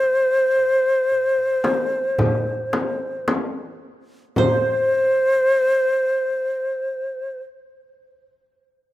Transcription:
Already playing: C5
0.03 darbuka ka
0.59 darbuka ka
1.12 darbuka ka
1.39 darbuka ka
1.64 darbuka tek, frame drum
2.18 darbuka dum, frame drum
2.73 darbuka tek, frame drum
3.28 darbuka tek, frame drum
4.36 C5, frame drum, darbuka dum

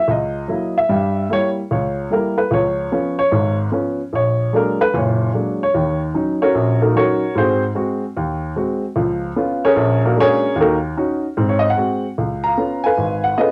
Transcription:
0.08 C#2 D#5
0.48 F#3 A#3 E4
0.78 E5
0.89 G2 G3
1.30 G3 A#3 E4 C#5
1.71 C#2 C#5
2.10 G3 A#3 E4 A#4
2.38 B4
2.50 C#2 F3 C#5
2.92 F3 B3 C#4
3.19 C#5
3.31 G#1 G#2
3.71 F3 B3 C#4
4.13 A#1 C#5
4.53 F#3 G#3 A#3 D4 A#4
4.81 B4
4.94 F#1 A#2 C#5
5.34 F#3 G#3 A#3 D4
5.63 C#5
5.74 D#2 D#3
6.14 F#3 C#4 D#4
6.42 C#4 F#4 A#4 C#5
6.55 A#1
6.82 A#3 D#4 F#4 A#4
6.95 F#3 C#4 D#4 F#4 A#4 C#5
7.35 G#2 C4 F#4 G#4 C5
7.75 G#3 C4 F#4
8.17 D#2
8.56 G#3 C4 F#4
8.96 C#2 F3
9.36 B3 C#4 F4
9.65 C#4 G#4 A#4 C#5
9.76 A#1
10.05 A#3 D4 F#4 A#4
10.16 G#3 A#3 D4 F#4
10.20 C#4 G#4 A#4 C#5
10.56 D#2
10.61 A#3 D#4 F#4 A#4
10.97 C#4 D#4 F#4
11.37 G#2 C4
11.49 C#5
11.59 D#5
11.70 F#5
11.77 G#3 C4 F#4
12.18 C#2
12.44 F5 A#5
12.58 B3 C#4 F4
12.84 B4 F5 G#5
12.98 G#1
13.24 F#5
13.38 B3 C#4 F4 G#4 B4 D#5

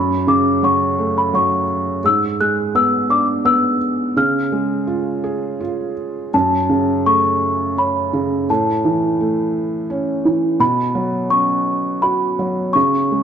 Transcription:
Already playing: F#2 B5
0.27 C#3 D6
0.63 F#3 C#6
0.99 A3
1.18 B5
1.33 F#3 C#6
2.04 G#2 E6
2.40 G#3 F#6
2.75 B3 E6
3.10 D4 D6
3.45 B3 E6
4.17 C#3 F6
4.52 G#3
4.87 F4
5.24 G#4
5.60 F4
6.34 F#2 A5
6.69 C#3
7.06 A3 C#6
7.77 C#4 B5
8.13 C#3
8.50 A2 A5
8.85 E3
9.20 A3
9.90 C#4
10.25 E3
10.60 B2 B5
10.95 F#3
11.30 C#4 C#6
12.02 F#4 B5
12.39 F#3
12.73 C#3 C#6
13.11 G#3

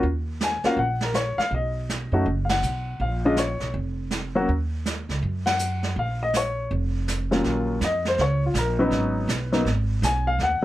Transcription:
0.03 D#2, brush sweep
0.41 G#5, snare, hi-hat pedal
0.64 A#3 C#4 F4 F#4 F5, muted upright bass stroke, snare
0.77 A#1 F#5, brush sweep
1.01 A#4, snare
1.14 C#5, snare, hi-hat pedal
1.38 F5, muted upright bass stroke, snare
1.51 B1 D#5, brush sweep
1.89 snare, hi-hat pedal
2.12 F#2 A3 C#4 D#4 F#4
2.26 F#1, brush sweep
2.45 F5
2.49 F#5, snare, ride
2.62 B1, hi-hat pedal
3.00 A#1 F5, brush sweep
3.25 G#3 C#4 D4 F4 D#5
3.37 C#5, snare, hi-hat pedal
3.60 B1, snare
3.73 F1, brush sweep
4.11 snare, hi-hat pedal
4.35 F#3 A#3 C#4 F#4
4.48 D#2, brush sweep
4.86 snare, hi-hat pedal
5.09 C#2, snare
5.22 F#2, brush sweep
5.46 F#5, snare, ride
5.59 hi-hat pedal
5.83 snare
5.96 A#1 F5, brush sweep
6.23 D#5
6.34 C#5, snare, hi-hat pedal
6.70 F1, brush sweep
7.08 snare, hi-hat pedal
7.31 D#2 F#3 A#3 C#4 F4, snare
7.44 A#1, brush sweep, snare
7.81 F2 D#5, snare, hi-hat pedal
8.05 C5, snare
8.18 C#2 C#5, brush sweep, snare
8.46 F4
8.54 A#1, snare, hi-hat pedal
8.59 A#4
8.79 F#3 B3 C#4 D#4 B4
8.91 G#1, brush sweep, snare
9.28 B1, snare, hi-hat pedal
9.52 F#3 A#3 B3 D#4, snare
9.65 G#1, brush sweep, snare
10.02 B1 G#5, snare, hi-hat pedal
10.27 F5
10.39 D#2, brush sweep, snare
10.43 F#5
10.62 muted upright bass stroke

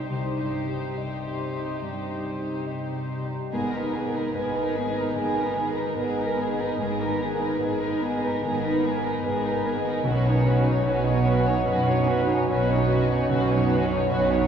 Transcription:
Already playing: G2 G3 D#4 G4 C5 D#5 G5
0.09 C2 C3 D#4 G4 C5
0.40 G2 D#4
0.68 G4 C5
0.97 D#5
1.26 G4 G5
1.54 D#4 D#5
1.82 G2 G3
2.09 D#4
2.13 D#4
2.38 G4 C5
2.66 D#5
2.95 G4 G5
3.22 D#4 D#5
3.51 G#1 G#2 B3 G#4 A#4
3.72 D#4 A#4 B4
3.78 B3 D#4
3.93 B3 G#4 A#4
4.07 A#4 B4
4.15 D#4 A#4 B4
4.34 G#1 G#2 B3 G#4 A#4 B4 D#5
4.55 D#4 A#4 B4
4.62 A#4 G#5
4.76 B3 G#4 A#4
4.88 B3 D#5
4.95 D#4 A#4 B4
5.14 G#1 G#2 D#3 B3 G#4 A#4
5.36 D#4 A#4 B4
5.42 B3 D#4
5.56 B3 G#4 A#4
5.71 A#4 B4
5.77 D#4 A#4 B4
5.97 G#1 G#2 B3 G#4 A#4 B4 D#5
6.19 D#4 A#4 B4
6.25 A#4 G#5
6.39 B3 G#4 A#4
6.52 B3 D#5
6.59 D#4 A#4 B4
6.79 G#1 G#2 B3 G#4 A#4
7.00 D#4 A#4 B4
7.06 D#3 D#4
7.21 B3 G#4 A#4
7.34 A#4 B4
7.42 D#4 A#4 B4
7.60 G#1 G#2 B3 G#4 A#4 B4 D#5
7.81 D#4 A#4 B4
7.87 A#4 G#5
8.03 B3 G#4 A#4
8.15 B3 D#5
8.23 D#4 A#4 B4
8.41 G#1 G#2 D#3 B3 G#4 A#4
8.64 D#4 A#4 B4
8.70 B3 D#4
8.84 B3 G#4 A#4
8.97 A#4 B4
9.05 D#4 A#4 B4
9.23 G#1 G#2 B3 G#4 A#4 B4 D#5
9.45 D#4 A#4 B4
9.52 A#4 G#5
9.65 B3 G#4 A#4
9.77 B3 D#5
9.87 D#4 A#4 B4
10.03 B1 B2 C#4
10.08 F#4 B4
10.27 C#4 D#4 C#5
10.33 D#4
10.47 C#4 F#4 B4
10.57 F#4 C#5
10.66 C#4 D#4 C#5
10.83 B1 B2 C#4 B4 C#5
10.87 F#4 D#5
11.06 C#4 D#4 C#5
11.12 F#4 F#5
11.27 C#4 F#4 B4
11.39 C#4 D#5
11.46 C#4 D#4 C#5
11.66 B1 F#2 B2 F#3 C#4 F#4 B4
11.88 C#4 D#4 C#5
11.95 C#4 D#4
12.08 C#4 F#4 B4
12.21 F#4 C#5
12.28 C#4 D#4 C#5
12.49 B1 B2 C#4 F#4 B4 C#5 D#5
12.69 C#4 D#4 C#5
12.76 F#4 F#5
12.89 C#4 F#4 B4
13.02 C#4 D#5
13.09 C#4 D#4 C#5
13.29 B1 B2 C#4 F#4 B4
13.50 C#4 D#4 C#5
13.56 F#2 D#4
13.69 F#4 B4
13.73 C#4
13.84 F#4 C#5
13.89 C#4 C#5
13.93 D#4
14.09 B1 B2 C#4 F#4 B4 C#5 D#5
14.31 C#4 D#4 C#5
14.37 F#4 F#5

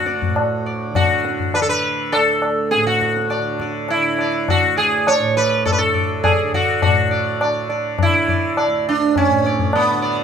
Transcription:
Already playing: D2 A2 D3 F#4
0.06 D5, tabla te
0.22 tabla ge
0.27 A2
0.36 tabla na
0.66 D5
0.91 D3
0.95 F#4, tabla na, tabla ge
1.25 tabla te
1.40 tabla ge
1.52 D3 B4, tabla na
1.62 A4
1.69 B4
2.12 D2 A4, tabla na
2.42 tabla na
2.71 G#4, tabla te
2.75 A2
2.87 F#4, tabla te
3.01 tabla ke
3.17 tabla te
3.30 D5, tabla na
3.39 D3
3.60 D5, tabla ke
3.89 E4, tabla na
3.97 D3
4.18 D5, tabla na
4.48 F#4, tabla na, tabla ge
4.58 D2
4.76 G#4 D5
5.07 C#5 D5, tabla na
5.20 A2
5.36 B4 D5, tabla na
5.66 A4, tabla na, tabla ge
5.72 B4
5.78 D3 A4
5.94 D5, tabla ge
6.24 G#4 D5, tabla na, tabla ge
6.44 D3
6.53 F#4 D5, tabla ge
6.82 A2 F#4, tabla na, tabla ge
7.11 D5
7.41 D3 D5, tabla na
7.69 D5, tabla na
7.99 D3 E4, tabla na, tabla ge
8.28 D5, tabla ge
8.57 D5, tabla na
8.66 D2
8.89 D4
9.16 C#4, tabla na, tabla ge
9.28 A2
9.45 D5, tabla te
9.59 tabla ge
9.73 B3, tabla na
9.89 D3
10.02 D5

